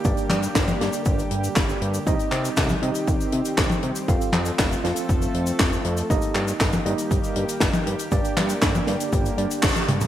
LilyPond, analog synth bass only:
\new Staff \with { instrumentName = "Analog synth bass" } { \clef bass \time 4/4 \key g \minor \tempo 4 = 119 g,,8 g,8 g,,8 g,8 g,,8 g,8 g,,8 g,8 | c,8 c8 c,8 c8 c,8 c8 c,8 c8 | f,,8 f,8 f,,8 f,8 f,,8 f,8 f,,8 f,8 | g,,8 g,8 g,,8 g,8 g,,8 g,8 g,,8 g,8 |
g,,8 g,8 g,,8 g,8 g,,8 g,8 g,,8 g,8 | }